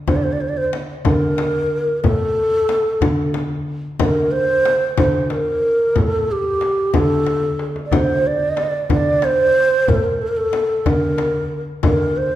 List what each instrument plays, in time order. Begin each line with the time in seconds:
0.08 cello D3, ney C5, tombak dum, frame drum
0.16 ney D5
0.23 ney C5
0.32 ney D5
0.40 ney C5, tombak ka
0.48 ney D5
0.57 ney C5
0.73 frame drum
1.05 cello D3, ney A#4, frame drum, tombak dum
1.22 tombak ka
1.38 tombak tek, frame drum
2.04 cello A2, ney A4, frame drum, tombak dum
2.37 tombak ka
2.69 tombak tek, frame drum
3.01 cello D3, tombak dum, frame drum
3.18 tombak ka
3.34 tombak tek, frame drum
3.99 cello D3, ney A#4, frame drum, tombak dum
4.32 ney C5, tombak ka
4.65 tombak tek, frame drum
4.97 cello D3, ney C5, frame drum, tombak dum
5.14 tombak ka
5.30 ney A#4, tombak tek, frame drum
5.96 cello A2, ney A4, frame drum, tombak dum
6.29 ney G4, tombak ka
6.61 tombak tek, frame drum
6.94 cello D3, ney A4, frame drum, tombak dum
7.11 tombak ka
7.27 tombak tek, frame drum
7.43 tombak ka
7.59 tombak tek
7.76 tombak ka
7.86 ney D5
7.91 cello D3, ney C5, tombak dum, frame drum
8.25 ney D5, tombak ka
8.57 tombak tek, frame drum
8.90 cello D3, ney D5, tombak dum, frame drum
9.06 tombak ka
9.22 ney C5, tombak tek, frame drum
9.88 cello A2, ney A#4, frame drum, tombak dum
9.94 ney A4
10.04 ney A#4
10.21 ney A4, tombak ka
10.28 ney A#4
10.37 ney A4
10.53 tombak tek, frame drum
10.86 cello D3, ney A#4, tombak dum, frame drum
11.02 tombak ka
11.18 tombak tek, frame drum
11.83 cello D3, ney A#4, frame drum, tombak dum
12.16 ney C5, tombak ka